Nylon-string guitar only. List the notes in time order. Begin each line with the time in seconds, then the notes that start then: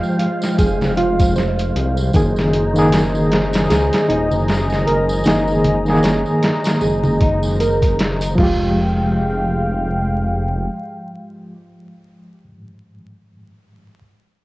Already playing: F5
0.19 F4
0.58 G#4
0.97 F4
1.36 C5
3.31 D#4
3.70 G#4
4.09 D#4
4.87 A#4
5.26 D#4
6.04 C#5
6.43 D#4
6.82 G#4
7.21 D#4
7.60 A#4
8.38 F4